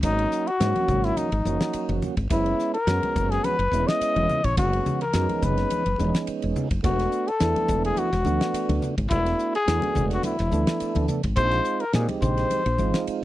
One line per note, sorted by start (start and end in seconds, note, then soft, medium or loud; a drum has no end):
0.03 0.25 G#1 medium
0.03 0.50 F#3 medium
0.03 0.50 A#3 medium
0.03 0.51 C#4 medium
0.03 0.49 D#4 medium
0.03 0.51 F#4 medium
0.03 kick loud
0.03 hi-hat pedal medium
0.03 ride medium
0.19 ride medium
0.32 snare soft
0.32 hi-hat pedal medium
0.47 1.06 F#4 medium
0.47 ride soft
0.60 0.72 G#2 medium
0.60 1.30 F#3 medium
0.60 1.30 A#3 medium
0.60 1.31 C#4 medium
0.60 1.31 F#4 medium
0.60 snare medium
0.60 hi-hat pedal medium
0.60 ride medium
0.76 ride medium
0.76 high conga medium
0.88 1.10 G#1 medium
0.88 kick medium
0.88 hi-hat pedal medium
0.88 low conga medium
1.04 1.18 E4 medium
1.04 snare soft
1.04 ride medium
1.16 2.02 D#4 medium
1.16 hi-hat pedal medium
1.16 ride medium
1.16 high conga medium
1.32 1.42 G#1 medium
1.32 ride soft
1.45 1.57 F#1 medium
1.45 2.15 F#3 medium
1.45 2.15 A#3 medium
1.45 2.15 C#4 medium
1.45 2.16 F#4 medium
1.45 hi-hat pedal medium
1.45 high conga medium
1.60 snare loud
1.60 ride soft
1.73 muted fretless electric bass stroke soft
1.73 hi-hat pedal medium
1.73 ride medium
1.89 1.99 F#1 medium
1.89 ride soft
1.89 high conga medium
2.02 hi-hat pedal medium
2.02 low conga medium
2.17 2.28 G#1 medium
2.17 kick medium
2.17 ride medium
2.30 2.53 F#1 medium
2.30 2.77 G#3 medium
2.30 2.77 B3 medium
2.30 2.78 C#4 medium
2.30 2.71 E4 medium
2.30 2.78 E4 medium
2.30 kick loud
2.30 hi-hat pedal medium
2.30 ride medium
2.46 ride soft
2.59 snare soft
2.59 hi-hat pedal medium
2.74 3.32 A#4 medium
2.74 ride soft
2.87 2.99 F#2 medium
2.87 3.57 G#3 medium
2.87 3.57 B3 medium
2.87 3.57 C#4 medium
2.87 3.58 F#4 medium
2.87 snare medium
2.87 hi-hat pedal medium
2.87 ride medium
3.03 ride medium
3.03 high conga medium
3.16 3.38 F#1 medium
3.16 kick medium
3.16 hi-hat pedal medium
3.16 low conga medium
3.31 3.46 G#4 medium
3.31 snare soft
3.31 ride medium
3.44 3.89 B4 medium
3.44 hi-hat pedal medium
3.44 ride medium
3.44 high conga medium
3.59 3.69 F#1 medium
3.59 ride soft
3.71 3.84 E1 medium
3.71 4.42 G#3 medium
3.71 4.42 B3 medium
3.71 4.42 C#4 medium
3.71 4.43 E4 medium
3.71 hi-hat pedal medium
3.87 4.46 D#5 loud
3.87 snare loud
3.87 ride soft
4.01 muted fretless electric bass stroke soft
4.01 snare soft
4.01 hi-hat pedal medium
4.01 ride medium
4.16 4.26 E1 medium
4.16 ride medium
4.16 high conga medium
4.29 hi-hat pedal medium
4.29 low conga medium
4.44 4.55 A#1 medium
4.44 4.57 C#5 medium
4.44 kick medium
4.44 ride medium
4.56 4.80 F#1 loud
4.56 5.04 G#3 medium
4.56 5.04 B3 medium
4.56 5.04 C#4 medium
4.56 4.98 F#4 medium
4.56 5.05 F#4 medium
4.56 kick loud
4.56 hi-hat pedal medium
4.56 ride medium
4.56 low conga medium
4.73 ride medium
4.86 hi-hat pedal medium
4.86 high conga medium
4.86 low conga medium
5.01 5.45 A#4 medium
5.01 ride medium
5.13 5.26 F#2 medium
5.13 5.83 G#3 medium
5.13 5.84 B3 medium
5.13 5.84 C#4 medium
5.13 5.85 D#4 medium
5.13 snare medium
5.13 hi-hat pedal medium
5.13 ride medium
5.29 ride medium
5.29 high conga medium
5.42 5.64 F#1 medium
5.42 6.28 B4 medium
5.42 kick medium
5.42 hi-hat pedal medium
5.42 low conga medium
5.58 snare soft
5.58 ride medium
5.70 hi-hat pedal medium
5.70 ride medium
5.70 high conga medium
5.86 5.96 F#1 medium
5.86 ride medium
5.98 6.11 E1 medium
5.98 6.68 G#3 medium
5.98 6.68 B3 medium
5.98 6.69 C#4 medium
5.98 6.69 D#4 medium
5.98 hi-hat pedal medium
5.98 high conga medium
6.14 snare loud
6.14 ride medium
6.27 muted fretless electric bass stroke soft
6.27 hi-hat pedal medium
6.27 ride medium
6.42 6.53 E1 medium
6.42 ride medium
6.56 hi-hat pedal medium
6.56 low conga medium
6.71 6.81 F#1 medium
6.71 kick medium
6.71 ride medium
6.83 7.06 E1 loud
6.83 7.30 A3 medium
6.83 7.31 B3 soft
6.83 7.31 D4 medium
6.83 7.31 F#4 medium
6.83 7.29 F#4 medium
6.83 kick loud
6.83 hi-hat pedal medium
6.83 ride medium
6.99 snare soft
6.99 ride medium
7.12 hi-hat pedal medium
7.28 7.85 A4 medium
7.28 ride soft
7.40 7.53 E2 medium
7.40 8.10 A3 medium
7.40 8.10 B3 medium
7.40 8.11 D4 medium
7.40 8.11 E4 medium
7.40 snare medium
7.40 hi-hat pedal medium
7.40 ride medium
7.56 ride medium
7.56 high conga medium
7.69 7.91 E1 medium
7.69 kick medium
7.69 hi-hat pedal medium
7.69 low conga medium
7.85 8.00 G#4 medium
7.85 ride medium
7.97 8.83 F#4 medium
7.97 hi-hat pedal medium
7.97 ride medium
7.97 high conga medium
8.13 8.23 E1 medium
8.13 snare soft
8.13 ride medium
8.24 8.37 D2 medium
8.24 8.95 A3 medium
8.24 8.95 B3 medium
8.24 8.95 D4 medium
8.24 8.96 F#4 medium
8.24 hi-hat pedal medium
8.24 high conga medium
8.41 snare medium
8.41 ride soft
8.54 muted fretless electric bass stroke soft
8.54 snare soft
8.54 hi-hat pedal medium
8.54 ride medium
8.69 8.79 D2 medium
8.69 ride medium
8.69 high conga medium
8.82 hi-hat pedal medium
8.82 low conga medium
8.98 9.08 G#1 medium
8.98 kick medium
8.98 ride medium
9.10 9.33 E1 loud
9.10 9.57 A3 medium
9.10 9.57 B3 medium
9.10 9.58 D4 medium
9.10 9.51 E4 medium
9.10 9.58 F#4 medium
9.10 kick loud
9.10 hi-hat pedal medium
9.10 ride medium
9.26 snare soft
9.26 ride medium
9.39 hi-hat pedal medium
9.55 10.08 G#4 medium
9.55 ride medium
9.66 9.79 E2 medium
9.66 10.36 A3 medium
9.66 10.37 B3 medium
9.66 10.37 D4 medium
9.66 10.37 F#4 medium
9.66 snare loud
9.66 hi-hat pedal medium
9.66 ride medium
9.82 ride soft
9.82 high conga medium
9.95 10.18 E1 medium
9.95 kick medium
9.95 hi-hat pedal medium
9.95 low conga medium
10.11 10.24 F#4 medium
10.11 snare soft
10.11 ride medium
10.23 11.06 E4 medium
10.23 hi-hat pedal medium
10.23 ride medium
10.23 high conga medium
10.39 10.50 E1 medium
10.39 snare soft
10.39 ride soft
10.51 10.64 D2 medium
10.51 11.22 A3 medium
10.51 11.22 B3 medium
10.51 11.22 D4 medium
10.51 11.23 A4 medium
10.51 hi-hat pedal medium
10.51 high conga medium
10.67 snare loud
10.67 ride medium
10.80 muted fretless electric bass stroke soft
10.80 snare soft
10.80 hi-hat pedal medium
10.80 ride medium
10.95 11.06 D2 medium
10.95 ride medium
10.95 high conga medium
11.08 hi-hat pedal medium
11.08 low conga medium
11.23 11.34 G#1 medium
11.23 kick medium
11.23 ride medium
11.36 11.59 A#1 loud
11.36 11.84 G#3 medium
11.36 11.84 C4 medium
11.36 11.85 D#4 medium
11.36 11.85 F4 medium
11.36 11.82 C5 loud
11.36 kick loud
11.36 hi-hat pedal medium
11.36 ride medium
11.51 snare soft
11.51 ride soft
11.65 hi-hat pedal medium
11.80 11.94 A#4 medium
11.80 ride medium
11.93 12.06 A#2 medium
11.93 12.63 G#3 medium
11.93 12.64 C4 medium
11.93 12.64 D#4 medium
11.93 12.64 G4 medium
11.93 12.07 G#4 medium
11.93 snare loud
11.93 hi-hat pedal medium
11.93 ride medium
12.09 ride medium
12.09 high conga medium
12.22 12.44 A#1 medium
12.22 13.04 C5 medium
12.22 kick medium
12.22 hi-hat pedal medium
12.22 low conga medium
12.37 snare soft
12.37 ride medium
12.50 hi-hat pedal medium
12.50 ride medium
12.50 high conga medium
12.66 12.76 A#1 medium
12.66 ride medium
12.78 12.91 G#1 medium
12.78 13.24 G#3 medium
12.78 13.24 C4 medium
12.78 13.24 D#4 medium
12.78 13.24 F4 medium
12.78 hi-hat pedal medium
12.78 high conga medium
12.94 snare medium
12.94 ride medium
13.07 muted fretless electric bass stroke soft
13.07 hi-hat pedal medium
13.07 ride medium